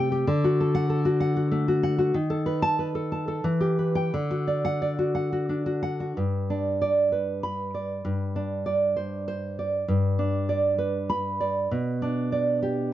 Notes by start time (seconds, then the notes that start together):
Already playing: C3 A3 G4 G5
0.12 G4
0.27 D3
0.44 F#4
0.60 A4
0.75 F#5
0.90 A4
1.05 F#4
1.20 F#5
1.36 F#4
1.51 A3
1.68 F#4
1.83 F#5
1.98 F#4
2.14 D#3
2.30 A4
2.46 B4
2.62 A5
2.79 B4
2.95 A4
3.12 A5
3.28 A4
3.44 E3
3.61 G4
3.79 B4
3.95 G5
4.14 D3
4.31 F#4
4.47 D5
4.65 F#5
4.82 D5
4.99 F#4
5.15 F#5
5.32 F#4
5.49 D4
5.66 F#4
5.83 F#5
6.00 F#4
6.17 G2
6.50 D4
6.82 D5
7.12 B4
7.43 B5
7.74 D5
8.05 G2
8.36 D4
8.66 D5
8.96 C5
9.28 C5
9.59 D5
9.88 G2
10.19 D4
10.49 D5
10.78 B4
11.10 B5
11.40 D5
11.71 B2
12.02 D4
12.32 D5
12.62 G4